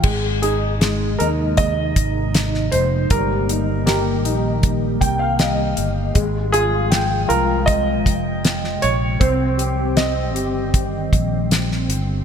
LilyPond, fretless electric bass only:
\new Staff \with { instrumentName = "Fretless electric bass" } { \clef bass \time 4/4 \key aes \major \tempo 4 = 79 aes,,4. ees,4 aes,,4 f,,8 | g,,4. bes,,4 c,4 g,,8 | aes,,4. c,4 f,,4 bes,,8 | c,4. g,,4 bes,,4 g,,8 | }